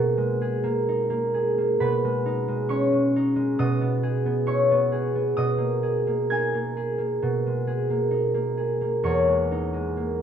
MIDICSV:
0, 0, Header, 1, 2, 480
1, 0, Start_track
1, 0, Tempo, 916031
1, 938, Tempo, 894188
1, 939, Time_signature, 4, 2, 24, 8
1, 2858, Tempo, 958466
1, 3338, Tempo, 914634
1, 5382, End_track
2, 0, Start_track
2, 0, Title_t, "Harp"
2, 0, Program_c, 0, 46
2, 0, Note_on_c, 0, 47, 62
2, 0, Note_on_c, 0, 56, 49
2, 0, Note_on_c, 0, 58, 51
2, 0, Note_on_c, 0, 63, 62
2, 0, Note_on_c, 0, 68, 55
2, 0, Note_on_c, 0, 75, 71
2, 0, Note_on_c, 0, 80, 84
2, 0, Note_on_c, 0, 87, 95
2, 0, Note_on_c, 0, 92, 102
2, 85, Note_off_c, 0, 56, 0
2, 91, Note_on_c, 0, 56, 51
2, 211, Note_off_c, 0, 68, 0
2, 217, Note_on_c, 0, 68, 58
2, 327, Note_off_c, 0, 58, 0
2, 333, Note_on_c, 0, 58, 55
2, 457, Note_off_c, 0, 63, 0
2, 464, Note_on_c, 0, 63, 52
2, 570, Note_off_c, 0, 58, 0
2, 576, Note_on_c, 0, 58, 57
2, 696, Note_off_c, 0, 68, 0
2, 703, Note_on_c, 0, 68, 56
2, 822, Note_off_c, 0, 58, 0
2, 828, Note_on_c, 0, 58, 52
2, 939, Note_off_c, 0, 47, 0
2, 943, Note_on_c, 0, 47, 61
2, 945, Note_on_c, 0, 83, 84
2, 949, Note_on_c, 0, 71, 62
2, 963, Note_off_c, 0, 58, 0
2, 1040, Note_off_c, 0, 87, 0
2, 1042, Note_off_c, 0, 75, 0
2, 1068, Note_off_c, 0, 56, 0
2, 1075, Note_on_c, 0, 56, 51
2, 1182, Note_off_c, 0, 63, 0
2, 1189, Note_on_c, 0, 63, 61
2, 1302, Note_off_c, 0, 56, 0
2, 1309, Note_on_c, 0, 56, 52
2, 1422, Note_on_c, 0, 85, 94
2, 1425, Note_on_c, 0, 61, 58
2, 1429, Note_on_c, 0, 73, 73
2, 1538, Note_off_c, 0, 56, 0
2, 1545, Note_on_c, 0, 56, 44
2, 1560, Note_off_c, 0, 92, 0
2, 1567, Note_off_c, 0, 80, 0
2, 1668, Note_off_c, 0, 63, 0
2, 1674, Note_on_c, 0, 63, 55
2, 1773, Note_off_c, 0, 56, 0
2, 1779, Note_on_c, 0, 56, 53
2, 1899, Note_off_c, 0, 47, 0
2, 1903, Note_on_c, 0, 47, 70
2, 1905, Note_on_c, 0, 87, 107
2, 1909, Note_on_c, 0, 75, 75
2, 1923, Note_off_c, 0, 63, 0
2, 2024, Note_on_c, 0, 59, 43
2, 2135, Note_off_c, 0, 68, 0
2, 2142, Note_on_c, 0, 68, 60
2, 2256, Note_off_c, 0, 59, 0
2, 2263, Note_on_c, 0, 59, 54
2, 2369, Note_off_c, 0, 85, 0
2, 2373, Note_on_c, 0, 64, 50
2, 2374, Note_off_c, 0, 73, 0
2, 2376, Note_on_c, 0, 85, 90
2, 2380, Note_on_c, 0, 73, 62
2, 2501, Note_off_c, 0, 59, 0
2, 2507, Note_on_c, 0, 59, 58
2, 2611, Note_off_c, 0, 68, 0
2, 2618, Note_on_c, 0, 68, 49
2, 2718, Note_off_c, 0, 87, 0
2, 2736, Note_off_c, 0, 59, 0
2, 2743, Note_on_c, 0, 59, 53
2, 2854, Note_off_c, 0, 47, 0
2, 2858, Note_on_c, 0, 87, 99
2, 2859, Note_off_c, 0, 75, 0
2, 2861, Note_on_c, 0, 47, 55
2, 2865, Note_on_c, 0, 75, 76
2, 2876, Note_off_c, 0, 64, 0
2, 2877, Note_off_c, 0, 85, 0
2, 2879, Note_off_c, 0, 61, 0
2, 2879, Note_off_c, 0, 73, 0
2, 2963, Note_on_c, 0, 58, 44
2, 3026, Note_off_c, 0, 83, 0
2, 3030, Note_off_c, 0, 71, 0
2, 3083, Note_off_c, 0, 68, 0
2, 3090, Note_on_c, 0, 68, 54
2, 3204, Note_off_c, 0, 58, 0
2, 3210, Note_on_c, 0, 58, 48
2, 3326, Note_on_c, 0, 92, 104
2, 3331, Note_on_c, 0, 63, 52
2, 3334, Note_on_c, 0, 80, 76
2, 3445, Note_off_c, 0, 58, 0
2, 3451, Note_on_c, 0, 58, 45
2, 3564, Note_off_c, 0, 68, 0
2, 3570, Note_on_c, 0, 68, 53
2, 3675, Note_off_c, 0, 58, 0
2, 3682, Note_on_c, 0, 58, 45
2, 3803, Note_off_c, 0, 47, 0
2, 3810, Note_on_c, 0, 47, 55
2, 3827, Note_off_c, 0, 56, 0
2, 3935, Note_on_c, 0, 56, 45
2, 4039, Note_off_c, 0, 68, 0
2, 4045, Note_on_c, 0, 68, 57
2, 4159, Note_off_c, 0, 58, 0
2, 4165, Note_on_c, 0, 58, 50
2, 4267, Note_off_c, 0, 63, 0
2, 4273, Note_on_c, 0, 63, 50
2, 4390, Note_off_c, 0, 58, 0
2, 4397, Note_on_c, 0, 58, 49
2, 4512, Note_off_c, 0, 68, 0
2, 4518, Note_on_c, 0, 68, 48
2, 4636, Note_off_c, 0, 58, 0
2, 4643, Note_on_c, 0, 58, 51
2, 4759, Note_on_c, 0, 40, 59
2, 4762, Note_on_c, 0, 85, 98
2, 4769, Note_off_c, 0, 59, 0
2, 4772, Note_on_c, 0, 73, 71
2, 4790, Note_off_c, 0, 47, 0
2, 4878, Note_off_c, 0, 56, 0
2, 4882, Note_off_c, 0, 87, 0
2, 4884, Note_on_c, 0, 56, 47
2, 4889, Note_off_c, 0, 75, 0
2, 5006, Note_off_c, 0, 63, 0
2, 5012, Note_on_c, 0, 63, 55
2, 5121, Note_off_c, 0, 56, 0
2, 5127, Note_on_c, 0, 56, 46
2, 5244, Note_off_c, 0, 58, 0
2, 5250, Note_on_c, 0, 58, 47
2, 5372, Note_off_c, 0, 92, 0
2, 5374, Note_off_c, 0, 56, 0
2, 5381, Note_off_c, 0, 80, 0
2, 5382, Note_off_c, 0, 40, 0
2, 5382, Note_off_c, 0, 58, 0
2, 5382, Note_off_c, 0, 63, 0
2, 5382, Note_off_c, 0, 68, 0
2, 5382, Note_off_c, 0, 73, 0
2, 5382, Note_off_c, 0, 85, 0
2, 5382, End_track
0, 0, End_of_file